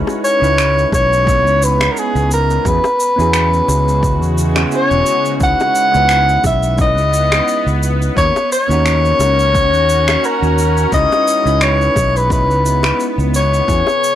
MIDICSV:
0, 0, Header, 1, 6, 480
1, 0, Start_track
1, 0, Tempo, 689655
1, 1846, Time_signature, 4, 2, 24, 8
1, 9849, End_track
2, 0, Start_track
2, 0, Title_t, "Soprano saxophone"
2, 0, Program_c, 0, 64
2, 169, Note_on_c, 0, 73, 90
2, 620, Note_off_c, 0, 73, 0
2, 657, Note_on_c, 0, 73, 95
2, 1142, Note_on_c, 0, 71, 86
2, 1152, Note_off_c, 0, 73, 0
2, 1330, Note_on_c, 0, 70, 61
2, 1341, Note_off_c, 0, 71, 0
2, 1387, Note_on_c, 0, 68, 80
2, 1397, Note_off_c, 0, 70, 0
2, 1616, Note_off_c, 0, 68, 0
2, 1624, Note_on_c, 0, 70, 88
2, 1862, Note_on_c, 0, 71, 97
2, 1872, Note_off_c, 0, 70, 0
2, 3112, Note_off_c, 0, 71, 0
2, 3306, Note_on_c, 0, 73, 91
2, 3748, Note_off_c, 0, 73, 0
2, 3784, Note_on_c, 0, 78, 111
2, 4467, Note_off_c, 0, 78, 0
2, 4499, Note_on_c, 0, 76, 94
2, 4716, Note_off_c, 0, 76, 0
2, 4739, Note_on_c, 0, 75, 85
2, 5425, Note_off_c, 0, 75, 0
2, 5692, Note_on_c, 0, 73, 94
2, 5912, Note_off_c, 0, 73, 0
2, 5932, Note_on_c, 0, 73, 106
2, 7137, Note_on_c, 0, 70, 88
2, 7147, Note_off_c, 0, 73, 0
2, 7609, Note_off_c, 0, 70, 0
2, 7613, Note_on_c, 0, 75, 106
2, 8096, Note_on_c, 0, 73, 92
2, 8106, Note_off_c, 0, 75, 0
2, 8468, Note_on_c, 0, 71, 89
2, 8478, Note_off_c, 0, 73, 0
2, 8571, Note_off_c, 0, 71, 0
2, 8577, Note_on_c, 0, 71, 84
2, 9081, Note_off_c, 0, 71, 0
2, 9301, Note_on_c, 0, 73, 112
2, 9849, Note_off_c, 0, 73, 0
2, 9849, End_track
3, 0, Start_track
3, 0, Title_t, "Synth keys"
3, 0, Program_c, 1, 88
3, 0, Note_on_c, 1, 56, 87
3, 0, Note_on_c, 1, 61, 78
3, 0, Note_on_c, 1, 63, 77
3, 0, Note_on_c, 1, 64, 73
3, 0, Note_on_c, 1, 71, 90
3, 75, Control_c, 1, 64, 127
3, 261, Note_off_c, 1, 56, 0
3, 263, Note_off_c, 1, 61, 0
3, 266, Note_off_c, 1, 63, 0
3, 268, Note_off_c, 1, 64, 0
3, 270, Note_off_c, 1, 71, 0
3, 280, Note_on_c, 1, 56, 84
3, 289, Note_on_c, 1, 61, 78
3, 298, Note_on_c, 1, 63, 78
3, 306, Note_on_c, 1, 64, 75
3, 315, Note_on_c, 1, 71, 93
3, 851, Note_off_c, 1, 56, 0
3, 856, Note_off_c, 1, 61, 0
3, 860, Note_off_c, 1, 63, 0
3, 864, Note_off_c, 1, 64, 0
3, 864, Note_on_c, 1, 56, 75
3, 869, Note_off_c, 1, 71, 0
3, 871, Note_on_c, 1, 61, 68
3, 882, Note_on_c, 1, 63, 65
3, 888, Note_on_c, 1, 64, 66
3, 896, Note_on_c, 1, 59, 78
3, 1809, Note_off_c, 1, 56, 0
3, 1813, Note_off_c, 1, 61, 0
3, 1818, Note_off_c, 1, 63, 0
3, 1821, Note_off_c, 1, 64, 0
3, 1826, Note_off_c, 1, 59, 0
3, 1839, Note_on_c, 1, 59, 70
3, 1843, Note_on_c, 1, 61, 63
3, 1847, Note_on_c, 1, 64, 66
3, 1850, Note_on_c, 1, 66, 67
3, 1854, Note_on_c, 1, 68, 80
3, 1855, Control_c, 1, 64, 0
3, 1970, Note_off_c, 1, 59, 0
3, 1972, Note_off_c, 1, 61, 0
3, 1974, Note_off_c, 1, 64, 0
3, 1975, Note_off_c, 1, 66, 0
3, 1978, Note_off_c, 1, 68, 0
3, 1985, Control_c, 1, 64, 127
3, 2199, Note_on_c, 1, 59, 84
3, 2208, Note_on_c, 1, 61, 74
3, 2215, Note_on_c, 1, 64, 68
3, 2224, Note_on_c, 1, 66, 69
3, 2234, Note_on_c, 1, 68, 86
3, 3142, Note_off_c, 1, 59, 0
3, 3147, Note_off_c, 1, 61, 0
3, 3151, Note_off_c, 1, 64, 0
3, 3155, Note_off_c, 1, 66, 0
3, 3160, Note_off_c, 1, 68, 0
3, 3167, Note_on_c, 1, 59, 72
3, 3172, Note_on_c, 1, 61, 64
3, 3175, Note_on_c, 1, 64, 64
3, 3182, Note_on_c, 1, 66, 67
3, 3186, Note_on_c, 1, 68, 74
3, 3255, Note_off_c, 1, 59, 0
3, 3257, Note_off_c, 1, 61, 0
3, 3258, Note_off_c, 1, 64, 0
3, 3262, Note_off_c, 1, 66, 0
3, 3264, Note_off_c, 1, 68, 0
3, 3280, Note_on_c, 1, 59, 79
3, 3283, Note_on_c, 1, 61, 71
3, 3287, Note_on_c, 1, 64, 74
3, 3293, Note_on_c, 1, 66, 75
3, 3294, Note_on_c, 1, 68, 88
3, 3737, Note_off_c, 1, 59, 0
3, 3739, Note_off_c, 1, 61, 0
3, 3741, Note_off_c, 1, 64, 0
3, 3744, Note_off_c, 1, 66, 0
3, 3744, Note_off_c, 1, 68, 0
3, 3754, Note_on_c, 1, 56, 90
3, 3758, Note_on_c, 1, 61, 80
3, 3764, Note_on_c, 1, 63, 76
3, 3768, Note_on_c, 1, 64, 75
3, 3771, Note_on_c, 1, 71, 90
3, 3776, Control_c, 1, 64, 0
3, 3877, Control_c, 1, 64, 127
3, 4101, Note_off_c, 1, 56, 0
3, 4103, Note_off_c, 1, 61, 0
3, 4106, Note_off_c, 1, 63, 0
3, 4108, Note_off_c, 1, 64, 0
3, 4110, Note_off_c, 1, 71, 0
3, 4117, Note_on_c, 1, 56, 80
3, 4128, Note_on_c, 1, 61, 75
3, 4136, Note_on_c, 1, 59, 72
3, 4144, Note_on_c, 1, 64, 73
3, 4153, Note_on_c, 1, 71, 91
3, 4689, Note_off_c, 1, 56, 0
3, 4695, Note_off_c, 1, 61, 0
3, 4699, Note_off_c, 1, 59, 0
3, 4703, Note_off_c, 1, 64, 0
3, 4707, Note_off_c, 1, 71, 0
3, 4708, Note_on_c, 1, 56, 74
3, 4718, Note_on_c, 1, 61, 69
3, 4726, Note_on_c, 1, 63, 70
3, 4734, Note_on_c, 1, 64, 70
3, 4743, Note_on_c, 1, 71, 78
3, 5651, Note_off_c, 1, 56, 0
3, 5656, Note_off_c, 1, 61, 0
3, 5660, Note_off_c, 1, 63, 0
3, 5665, Note_off_c, 1, 64, 0
3, 5669, Note_off_c, 1, 71, 0
3, 5672, Note_on_c, 1, 58, 73
3, 5678, Note_on_c, 1, 61, 66
3, 5682, Note_on_c, 1, 63, 62
3, 5685, Note_on_c, 1, 66, 62
3, 5689, Note_on_c, 1, 70, 81
3, 5696, Control_c, 1, 64, 0
3, 5807, Note_off_c, 1, 58, 0
3, 5809, Note_off_c, 1, 61, 0
3, 5812, Note_off_c, 1, 63, 0
3, 5813, Note_off_c, 1, 66, 0
3, 5815, Note_off_c, 1, 70, 0
3, 5816, Control_c, 1, 64, 127
3, 6041, Note_on_c, 1, 58, 78
3, 6048, Note_on_c, 1, 61, 77
3, 6057, Note_on_c, 1, 63, 74
3, 6066, Note_on_c, 1, 66, 79
3, 6076, Note_on_c, 1, 70, 84
3, 7572, Note_off_c, 1, 58, 0
3, 7575, Note_off_c, 1, 61, 0
3, 7580, Note_off_c, 1, 63, 0
3, 7584, Note_off_c, 1, 66, 0
3, 7589, Note_off_c, 1, 70, 0
3, 7596, Note_on_c, 1, 56, 84
3, 7603, Note_on_c, 1, 61, 82
3, 7605, Note_on_c, 1, 63, 78
3, 7611, Note_on_c, 1, 64, 84
3, 7613, Note_on_c, 1, 71, 91
3, 7616, Control_c, 1, 64, 0
3, 7738, Control_c, 1, 64, 127
3, 7942, Note_off_c, 1, 56, 0
3, 7946, Note_off_c, 1, 61, 0
3, 7946, Note_off_c, 1, 63, 0
3, 7950, Note_off_c, 1, 64, 0
3, 7951, Note_off_c, 1, 71, 0
3, 7958, Note_on_c, 1, 56, 79
3, 7969, Note_on_c, 1, 61, 80
3, 7977, Note_on_c, 1, 63, 80
3, 7983, Note_on_c, 1, 64, 75
3, 7992, Note_on_c, 1, 71, 90
3, 8530, Note_off_c, 1, 56, 0
3, 8535, Note_off_c, 1, 61, 0
3, 8540, Note_off_c, 1, 63, 0
3, 8542, Note_off_c, 1, 64, 0
3, 8547, Note_off_c, 1, 71, 0
3, 8547, Note_on_c, 1, 56, 72
3, 8556, Note_on_c, 1, 61, 67
3, 8566, Note_on_c, 1, 63, 72
3, 8573, Note_on_c, 1, 64, 69
3, 8584, Note_on_c, 1, 71, 83
3, 9491, Note_off_c, 1, 56, 0
3, 9495, Note_off_c, 1, 61, 0
3, 9500, Note_off_c, 1, 63, 0
3, 9504, Note_off_c, 1, 64, 0
3, 9510, Note_off_c, 1, 71, 0
3, 9516, Note_on_c, 1, 59, 71
3, 9522, Note_on_c, 1, 61, 66
3, 9525, Note_on_c, 1, 64, 66
3, 9530, Note_on_c, 1, 66, 64
3, 9533, Note_on_c, 1, 68, 77
3, 9536, Control_c, 1, 64, 0
3, 9648, Note_off_c, 1, 59, 0
3, 9651, Note_off_c, 1, 61, 0
3, 9653, Note_off_c, 1, 64, 0
3, 9655, Note_off_c, 1, 66, 0
3, 9655, Control_c, 1, 64, 127
3, 9657, Note_off_c, 1, 68, 0
3, 9849, End_track
4, 0, Start_track
4, 0, Title_t, "Ambient pad"
4, 0, Program_c, 2, 92
4, 0, Note_on_c, 2, 59, 70
4, 1821, Note_off_c, 2, 59, 0
4, 1840, Note_on_c, 2, 66, 84
4, 1841, Note_on_c, 2, 49, 75
4, 1842, Note_on_c, 2, 56, 66
4, 3744, Note_off_c, 2, 49, 0
4, 3744, Note_off_c, 2, 66, 0
4, 3745, Note_off_c, 2, 56, 0
4, 3764, Note_on_c, 2, 59, 71
4, 5666, Note_off_c, 2, 59, 0
4, 5682, Note_on_c, 2, 66, 81
4, 5683, Note_on_c, 2, 61, 71
4, 7585, Note_off_c, 2, 66, 0
4, 7586, Note_off_c, 2, 61, 0
4, 7610, Note_on_c, 2, 59, 68
4, 9509, Note_off_c, 2, 59, 0
4, 9522, Note_on_c, 2, 49, 75
4, 9522, Note_on_c, 2, 56, 70
4, 9522, Note_on_c, 2, 66, 89
4, 9849, Note_off_c, 2, 49, 0
4, 9849, Note_off_c, 2, 56, 0
4, 9849, Note_off_c, 2, 66, 0
4, 9849, End_track
5, 0, Start_track
5, 0, Title_t, "Fretless electric bass"
5, 0, Program_c, 3, 35
5, 291, Note_on_c, 3, 37, 84
5, 585, Note_off_c, 3, 37, 0
5, 640, Note_on_c, 3, 35, 78
5, 1011, Note_off_c, 3, 35, 0
5, 1011, Note_on_c, 3, 37, 101
5, 1305, Note_off_c, 3, 37, 0
5, 1498, Note_on_c, 3, 37, 88
5, 1789, Note_off_c, 3, 37, 0
5, 1844, Note_on_c, 3, 40, 82
5, 1934, Note_off_c, 3, 40, 0
5, 2217, Note_on_c, 3, 40, 83
5, 2509, Note_off_c, 3, 40, 0
5, 2563, Note_on_c, 3, 37, 81
5, 2933, Note_off_c, 3, 37, 0
5, 2933, Note_on_c, 3, 40, 97
5, 3227, Note_off_c, 3, 40, 0
5, 3417, Note_on_c, 3, 28, 76
5, 3490, Note_off_c, 3, 28, 0
5, 3761, Note_on_c, 3, 37, 84
5, 3853, Note_off_c, 3, 37, 0
5, 4139, Note_on_c, 3, 37, 84
5, 4429, Note_off_c, 3, 37, 0
5, 4480, Note_on_c, 3, 35, 80
5, 4854, Note_off_c, 3, 35, 0
5, 4854, Note_on_c, 3, 37, 90
5, 5147, Note_off_c, 3, 37, 0
5, 5334, Note_on_c, 3, 37, 93
5, 5627, Note_off_c, 3, 37, 0
5, 5682, Note_on_c, 3, 39, 85
5, 5773, Note_off_c, 3, 39, 0
5, 6049, Note_on_c, 3, 39, 83
5, 6345, Note_off_c, 3, 39, 0
5, 6397, Note_on_c, 3, 37, 77
5, 6773, Note_off_c, 3, 37, 0
5, 6773, Note_on_c, 3, 39, 97
5, 7066, Note_off_c, 3, 39, 0
5, 7254, Note_on_c, 3, 39, 88
5, 7547, Note_off_c, 3, 39, 0
5, 7602, Note_on_c, 3, 37, 87
5, 7693, Note_off_c, 3, 37, 0
5, 7973, Note_on_c, 3, 37, 85
5, 8266, Note_off_c, 3, 37, 0
5, 8322, Note_on_c, 3, 35, 80
5, 8692, Note_off_c, 3, 35, 0
5, 8692, Note_on_c, 3, 37, 101
5, 8986, Note_off_c, 3, 37, 0
5, 9173, Note_on_c, 3, 37, 86
5, 9466, Note_off_c, 3, 37, 0
5, 9521, Note_on_c, 3, 40, 86
5, 9613, Note_off_c, 3, 40, 0
5, 9849, End_track
6, 0, Start_track
6, 0, Title_t, "Drums"
6, 50, Note_on_c, 9, 60, 90
6, 63, Note_on_c, 9, 69, 20
6, 120, Note_off_c, 9, 60, 0
6, 132, Note_off_c, 9, 69, 0
6, 171, Note_on_c, 9, 69, 70
6, 241, Note_off_c, 9, 69, 0
6, 303, Note_on_c, 9, 69, 31
6, 373, Note_off_c, 9, 69, 0
6, 406, Note_on_c, 9, 26, 72
6, 411, Note_on_c, 9, 69, 43
6, 475, Note_off_c, 9, 26, 0
6, 481, Note_off_c, 9, 69, 0
6, 546, Note_on_c, 9, 69, 20
6, 616, Note_off_c, 9, 69, 0
6, 644, Note_on_c, 9, 36, 100
6, 645, Note_on_c, 9, 60, 64
6, 654, Note_on_c, 9, 69, 75
6, 713, Note_off_c, 9, 36, 0
6, 715, Note_off_c, 9, 60, 0
6, 723, Note_off_c, 9, 69, 0
6, 786, Note_on_c, 9, 69, 33
6, 856, Note_off_c, 9, 69, 0
6, 884, Note_on_c, 9, 36, 117
6, 894, Note_on_c, 9, 69, 41
6, 954, Note_off_c, 9, 36, 0
6, 963, Note_off_c, 9, 69, 0
6, 1024, Note_on_c, 9, 69, 22
6, 1093, Note_off_c, 9, 69, 0
6, 1130, Note_on_c, 9, 69, 75
6, 1199, Note_off_c, 9, 69, 0
6, 1256, Note_on_c, 9, 60, 88
6, 1259, Note_on_c, 9, 26, 74
6, 1264, Note_on_c, 9, 69, 29
6, 1326, Note_off_c, 9, 60, 0
6, 1328, Note_off_c, 9, 26, 0
6, 1334, Note_off_c, 9, 69, 0
6, 1370, Note_on_c, 9, 69, 42
6, 1439, Note_off_c, 9, 69, 0
6, 1502, Note_on_c, 9, 69, 23
6, 1572, Note_off_c, 9, 69, 0
6, 1608, Note_on_c, 9, 69, 75
6, 1678, Note_off_c, 9, 69, 0
6, 1743, Note_on_c, 9, 69, 31
6, 1812, Note_off_c, 9, 69, 0
6, 1845, Note_on_c, 9, 36, 115
6, 1851, Note_on_c, 9, 69, 41
6, 1915, Note_off_c, 9, 36, 0
6, 1921, Note_off_c, 9, 69, 0
6, 1976, Note_on_c, 9, 60, 88
6, 1981, Note_on_c, 9, 69, 20
6, 2046, Note_off_c, 9, 60, 0
6, 2051, Note_off_c, 9, 69, 0
6, 2088, Note_on_c, 9, 69, 68
6, 2157, Note_off_c, 9, 69, 0
6, 2224, Note_on_c, 9, 69, 32
6, 2293, Note_off_c, 9, 69, 0
6, 2321, Note_on_c, 9, 26, 65
6, 2326, Note_on_c, 9, 69, 43
6, 2390, Note_off_c, 9, 26, 0
6, 2396, Note_off_c, 9, 69, 0
6, 2459, Note_on_c, 9, 69, 21
6, 2529, Note_off_c, 9, 69, 0
6, 2563, Note_on_c, 9, 60, 60
6, 2569, Note_on_c, 9, 69, 66
6, 2633, Note_off_c, 9, 60, 0
6, 2638, Note_off_c, 9, 69, 0
6, 2703, Note_on_c, 9, 69, 34
6, 2772, Note_off_c, 9, 69, 0
6, 2803, Note_on_c, 9, 36, 114
6, 2811, Note_on_c, 9, 69, 46
6, 2873, Note_off_c, 9, 36, 0
6, 2880, Note_off_c, 9, 69, 0
6, 2941, Note_on_c, 9, 69, 21
6, 3011, Note_off_c, 9, 69, 0
6, 3048, Note_on_c, 9, 69, 77
6, 3117, Note_off_c, 9, 69, 0
6, 3172, Note_on_c, 9, 26, 66
6, 3172, Note_on_c, 9, 60, 93
6, 3178, Note_on_c, 9, 69, 30
6, 3242, Note_off_c, 9, 26, 0
6, 3242, Note_off_c, 9, 60, 0
6, 3248, Note_off_c, 9, 69, 0
6, 3282, Note_on_c, 9, 69, 41
6, 3351, Note_off_c, 9, 69, 0
6, 3418, Note_on_c, 9, 69, 22
6, 3487, Note_off_c, 9, 69, 0
6, 3523, Note_on_c, 9, 69, 72
6, 3592, Note_off_c, 9, 69, 0
6, 3657, Note_on_c, 9, 69, 30
6, 3726, Note_off_c, 9, 69, 0
6, 3760, Note_on_c, 9, 69, 43
6, 3763, Note_on_c, 9, 36, 101
6, 3830, Note_off_c, 9, 69, 0
6, 3832, Note_off_c, 9, 36, 0
6, 3897, Note_on_c, 9, 69, 20
6, 3903, Note_on_c, 9, 60, 92
6, 3967, Note_off_c, 9, 69, 0
6, 3972, Note_off_c, 9, 60, 0
6, 4004, Note_on_c, 9, 69, 69
6, 4073, Note_off_c, 9, 69, 0
6, 4136, Note_on_c, 9, 69, 31
6, 4206, Note_off_c, 9, 69, 0
6, 4238, Note_on_c, 9, 26, 67
6, 4243, Note_on_c, 9, 69, 40
6, 4307, Note_off_c, 9, 26, 0
6, 4313, Note_off_c, 9, 69, 0
6, 4377, Note_on_c, 9, 69, 20
6, 4447, Note_off_c, 9, 69, 0
6, 4482, Note_on_c, 9, 36, 94
6, 4482, Note_on_c, 9, 60, 58
6, 4482, Note_on_c, 9, 69, 70
6, 4552, Note_off_c, 9, 36, 0
6, 4552, Note_off_c, 9, 60, 0
6, 4552, Note_off_c, 9, 69, 0
6, 4614, Note_on_c, 9, 69, 33
6, 4683, Note_off_c, 9, 69, 0
6, 4719, Note_on_c, 9, 69, 44
6, 4723, Note_on_c, 9, 36, 116
6, 4789, Note_off_c, 9, 69, 0
6, 4792, Note_off_c, 9, 36, 0
6, 4857, Note_on_c, 9, 69, 22
6, 4926, Note_off_c, 9, 69, 0
6, 4965, Note_on_c, 9, 69, 73
6, 5035, Note_off_c, 9, 69, 0
6, 5094, Note_on_c, 9, 26, 67
6, 5095, Note_on_c, 9, 60, 84
6, 5100, Note_on_c, 9, 69, 32
6, 5164, Note_off_c, 9, 26, 0
6, 5165, Note_off_c, 9, 60, 0
6, 5170, Note_off_c, 9, 69, 0
6, 5206, Note_on_c, 9, 69, 40
6, 5275, Note_off_c, 9, 69, 0
6, 5341, Note_on_c, 9, 69, 22
6, 5410, Note_off_c, 9, 69, 0
6, 5448, Note_on_c, 9, 69, 75
6, 5518, Note_off_c, 9, 69, 0
6, 5581, Note_on_c, 9, 69, 31
6, 5651, Note_off_c, 9, 69, 0
6, 5684, Note_on_c, 9, 36, 109
6, 5690, Note_on_c, 9, 69, 39
6, 5753, Note_off_c, 9, 36, 0
6, 5760, Note_off_c, 9, 69, 0
6, 5820, Note_on_c, 9, 60, 82
6, 5822, Note_on_c, 9, 69, 18
6, 5889, Note_off_c, 9, 60, 0
6, 5892, Note_off_c, 9, 69, 0
6, 5932, Note_on_c, 9, 69, 69
6, 6001, Note_off_c, 9, 69, 0
6, 6062, Note_on_c, 9, 69, 32
6, 6131, Note_off_c, 9, 69, 0
6, 6164, Note_on_c, 9, 26, 63
6, 6169, Note_on_c, 9, 69, 37
6, 6233, Note_off_c, 9, 26, 0
6, 6239, Note_off_c, 9, 69, 0
6, 6299, Note_on_c, 9, 69, 20
6, 6369, Note_off_c, 9, 69, 0
6, 6403, Note_on_c, 9, 69, 68
6, 6405, Note_on_c, 9, 60, 64
6, 6472, Note_off_c, 9, 69, 0
6, 6475, Note_off_c, 9, 60, 0
6, 6537, Note_on_c, 9, 69, 30
6, 6607, Note_off_c, 9, 69, 0
6, 6644, Note_on_c, 9, 36, 109
6, 6646, Note_on_c, 9, 69, 40
6, 6714, Note_off_c, 9, 36, 0
6, 6715, Note_off_c, 9, 69, 0
6, 6778, Note_on_c, 9, 69, 21
6, 6847, Note_off_c, 9, 69, 0
6, 6885, Note_on_c, 9, 69, 65
6, 6955, Note_off_c, 9, 69, 0
6, 7014, Note_on_c, 9, 26, 69
6, 7020, Note_on_c, 9, 60, 84
6, 7020, Note_on_c, 9, 69, 27
6, 7084, Note_off_c, 9, 26, 0
6, 7089, Note_off_c, 9, 60, 0
6, 7090, Note_off_c, 9, 69, 0
6, 7128, Note_on_c, 9, 69, 39
6, 7197, Note_off_c, 9, 69, 0
6, 7261, Note_on_c, 9, 69, 22
6, 7331, Note_off_c, 9, 69, 0
6, 7366, Note_on_c, 9, 69, 68
6, 7436, Note_off_c, 9, 69, 0
6, 7498, Note_on_c, 9, 69, 31
6, 7568, Note_off_c, 9, 69, 0
6, 7603, Note_on_c, 9, 69, 41
6, 7604, Note_on_c, 9, 36, 101
6, 7673, Note_off_c, 9, 69, 0
6, 7674, Note_off_c, 9, 36, 0
6, 7738, Note_on_c, 9, 69, 19
6, 7742, Note_on_c, 9, 60, 78
6, 7808, Note_off_c, 9, 69, 0
6, 7811, Note_off_c, 9, 60, 0
6, 7848, Note_on_c, 9, 69, 68
6, 7917, Note_off_c, 9, 69, 0
6, 7980, Note_on_c, 9, 69, 29
6, 8050, Note_off_c, 9, 69, 0
6, 8081, Note_on_c, 9, 26, 68
6, 8087, Note_on_c, 9, 69, 38
6, 8150, Note_off_c, 9, 26, 0
6, 8156, Note_off_c, 9, 69, 0
6, 8223, Note_on_c, 9, 69, 19
6, 8293, Note_off_c, 9, 69, 0
6, 8324, Note_on_c, 9, 36, 89
6, 8325, Note_on_c, 9, 60, 55
6, 8330, Note_on_c, 9, 69, 70
6, 8393, Note_off_c, 9, 36, 0
6, 8394, Note_off_c, 9, 60, 0
6, 8399, Note_off_c, 9, 69, 0
6, 8466, Note_on_c, 9, 69, 31
6, 8535, Note_off_c, 9, 69, 0
6, 8563, Note_on_c, 9, 36, 112
6, 8571, Note_on_c, 9, 69, 42
6, 8632, Note_off_c, 9, 36, 0
6, 8640, Note_off_c, 9, 69, 0
6, 8704, Note_on_c, 9, 69, 20
6, 8774, Note_off_c, 9, 69, 0
6, 8809, Note_on_c, 9, 69, 67
6, 8879, Note_off_c, 9, 69, 0
6, 8930, Note_on_c, 9, 60, 80
6, 8937, Note_on_c, 9, 26, 70
6, 8943, Note_on_c, 9, 69, 29
6, 8999, Note_off_c, 9, 60, 0
6, 9006, Note_off_c, 9, 26, 0
6, 9012, Note_off_c, 9, 69, 0
6, 9048, Note_on_c, 9, 69, 40
6, 9118, Note_off_c, 9, 69, 0
6, 9182, Note_on_c, 9, 69, 21
6, 9252, Note_off_c, 9, 69, 0
6, 9287, Note_on_c, 9, 69, 73
6, 9357, Note_off_c, 9, 69, 0
6, 9422, Note_on_c, 9, 69, 29
6, 9492, Note_off_c, 9, 69, 0
6, 9523, Note_on_c, 9, 36, 109
6, 9529, Note_on_c, 9, 69, 42
6, 9592, Note_off_c, 9, 36, 0
6, 9598, Note_off_c, 9, 69, 0
6, 9652, Note_on_c, 9, 60, 82
6, 9663, Note_on_c, 9, 69, 20
6, 9721, Note_off_c, 9, 60, 0
6, 9733, Note_off_c, 9, 69, 0
6, 9770, Note_on_c, 9, 69, 64
6, 9840, Note_off_c, 9, 69, 0
6, 9849, End_track
0, 0, End_of_file